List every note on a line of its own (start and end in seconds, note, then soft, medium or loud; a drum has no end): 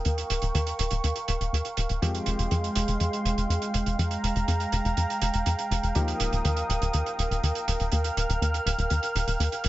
0.00 1.99 F3 medium
0.00 1.99 A#3 medium
0.00 1.99 D#4 medium
0.00 1.99 G4 medium
0.00 1.98 A#4 medium
0.00 9.69 F5 medium
0.00 1.98 G5 medium
0.05 0.24 D#2 loud
0.05 2.00 C#6 medium
0.05 closed hi-hat medium
0.18 closed hi-hat medium
0.30 0.39 D#1 medium
0.30 closed hi-hat loud
0.42 0.51 D#1 loud
0.42 closed hi-hat medium
0.54 0.73 D#2 loud
0.54 closed hi-hat medium
0.67 closed hi-hat medium
0.79 0.88 D#1 medium
0.79 closed hi-hat loud
0.91 1.01 D#1 loud
0.91 closed hi-hat medium
1.04 1.13 D#2 medium
1.04 closed hi-hat medium
1.16 closed hi-hat medium
1.28 1.37 D#1 medium
1.28 closed hi-hat medium
1.41 1.50 D#1 medium
1.41 closed hi-hat soft
1.53 1.62 D#2 medium
1.53 closed hi-hat medium
1.65 closed hi-hat medium
1.77 1.87 D#1 medium
1.77 closed hi-hat medium
1.89 1.99 D#1 medium
1.89 closed hi-hat soft
2.02 2.20 F2 loud
2.02 5.93 F3 medium
2.02 5.93 G#3 medium
2.02 5.92 G#3 medium
2.02 5.93 C4 medium
2.02 5.93 G4 medium
2.02 9.69 G5 medium
2.02 3.97 C6 medium
2.02 closed hi-hat medium
2.15 closed hi-hat medium
2.26 2.36 F1 medium
2.26 closed hi-hat medium
2.39 2.48 F1 loud
2.39 closed hi-hat medium
2.51 2.70 F2 loud
2.51 closed hi-hat medium
2.64 closed hi-hat soft
2.75 2.85 F1 medium
2.75 closed hi-hat loud
2.88 2.97 F1 loud
2.88 closed hi-hat medium
3.00 3.10 F2 medium
3.00 closed hi-hat medium
3.13 closed hi-hat soft
3.25 3.34 F1 medium
3.25 closed hi-hat medium
3.37 3.47 F1 medium
3.37 closed hi-hat soft
3.50 3.59 F2 medium
3.50 closed hi-hat medium
3.62 closed hi-hat soft
3.74 3.83 F1 medium
3.74 closed hi-hat medium
3.86 3.96 F1 medium
3.86 closed hi-hat soft
3.99 4.17 F2 medium
3.99 5.94 A#5 medium
3.99 closed hi-hat medium
4.11 closed hi-hat medium
4.23 4.33 F1 medium
4.23 closed hi-hat medium
4.36 4.45 F1 loud
4.36 closed hi-hat soft
4.48 4.66 F2 medium
4.48 closed hi-hat medium
4.60 closed hi-hat soft
4.72 4.82 F1 medium
4.72 closed hi-hat medium
4.85 4.94 F1 loud
4.85 closed hi-hat soft
4.97 5.06 F2 medium
4.97 closed hi-hat medium
5.10 closed hi-hat soft
5.21 5.31 F1 medium
5.21 closed hi-hat medium
5.34 5.43 F1 medium
5.34 closed hi-hat soft
5.46 5.56 F2 medium
5.46 closed hi-hat medium
5.59 closed hi-hat soft
5.71 5.80 F1 medium
5.71 closed hi-hat medium
5.83 5.92 F1 medium
5.83 closed hi-hat soft
5.95 6.14 D#2 loud
5.95 9.69 F3 medium
5.95 9.69 A#3 medium
5.95 9.69 D#4 medium
5.95 9.69 G4 medium
5.95 9.69 A#4 medium
5.95 7.90 D#6 medium
5.95 closed hi-hat medium
6.08 closed hi-hat medium
6.20 6.29 D#1 medium
6.20 closed hi-hat loud
6.32 6.42 D#1 loud
6.32 closed hi-hat soft
6.45 6.63 D#2 loud
6.45 closed hi-hat medium
6.57 closed hi-hat medium
6.69 6.78 D#1 medium
6.69 closed hi-hat medium
6.82 6.91 D#1 loud
6.82 closed hi-hat medium
6.93 7.03 D#2 medium
6.93 closed hi-hat medium
7.06 closed hi-hat soft
7.18 7.28 D#1 medium
7.18 closed hi-hat medium
7.31 7.40 D#1 medium
7.31 closed hi-hat medium
7.43 7.52 D#2 medium
7.43 closed hi-hat medium
7.55 closed hi-hat soft
7.68 7.77 D#1 medium
7.68 closed hi-hat medium
7.80 7.89 D#1 medium
7.80 closed hi-hat medium
7.92 8.11 D#2 medium
7.92 9.69 F6 medium
7.92 closed hi-hat medium
8.04 closed hi-hat medium
8.17 8.26 D#1 medium
8.17 closed hi-hat medium
8.29 8.38 D#1 loud
8.29 closed hi-hat medium
8.41 8.60 D#2 medium
8.41 closed hi-hat medium
8.54 closed hi-hat medium
8.66 8.75 D#1 medium
8.66 closed hi-hat loud
8.78 8.88 D#1 loud
8.78 closed hi-hat soft
8.90 9.00 D#2 medium
8.90 closed hi-hat medium
9.03 closed hi-hat medium
9.15 9.24 D#1 medium
9.15 closed hi-hat medium
9.27 9.37 D#1 medium
9.27 closed hi-hat medium
9.40 9.49 D#2 medium
9.40 closed hi-hat medium
9.52 closed hi-hat soft
9.64 9.69 D#1 medium
9.64 closed hi-hat medium